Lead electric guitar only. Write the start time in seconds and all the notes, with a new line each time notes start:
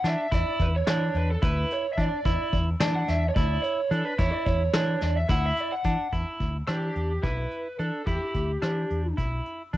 0.07 E5
0.34 D5
0.62 B4
0.76 C#5
1.17 B4
1.31 A4
1.44 B4
1.73 C#5
1.93 E5
2.02 D5
2.81 D5
2.96 F#5
3.09 E5
3.29 C#5
3.35 D5
3.63 C#5
3.91 A4
4.05 B4
4.18 C#5
4.32 D5
4.46 C#5
5.03 D5
5.17 E5
5.31 F#5
5.46 E5
5.60 D5
5.72 F#5
6.68 G4
7.23 B4
7.79 A4
8.06 G4